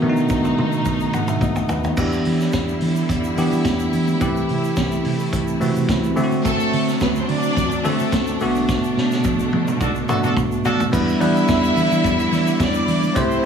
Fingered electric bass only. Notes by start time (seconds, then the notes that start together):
0.02 B2
0.30 B1
0.58 B2
0.86 B1
1.14 B2
1.41 B1
1.70 D#2
1.97 E2
2.26 E3
2.54 E2
2.82 E3
3.09 E2
3.38 E3
3.52 E3
3.65 E2
3.94 E3
4.21 C2
4.50 C3
4.77 C2
5.05 C3
5.33 C2
5.61 C3
5.76 C3
5.89 C2
6.17 D3
6.73 D3
7.01 D2
7.29 D3
7.57 D2
7.86 D3
8.00 D3
8.13 D2
8.42 B1
8.97 B2
9.25 B1
9.53 B2
9.81 B1
10.09 B2
10.24 B2
10.36 B1
10.65 B2
10.93 E2
11.21 E3
11.49 E2
11.77 E3
11.92 E3
12.04 E2
12.32 E3
12.60 E2
12.88 E3
13.16 C2